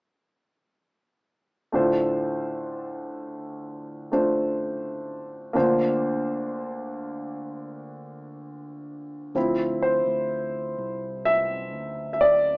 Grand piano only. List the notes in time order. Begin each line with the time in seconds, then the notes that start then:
1.72 D2 A2 A3 D4 F4 C5
4.12 A3 D4 F4 C5
5.53 D2 D3 A#3 D4 F4 C5
9.36 F3 C4 E4
9.82 C5
11.25 E5
12.13 E5
12.21 D5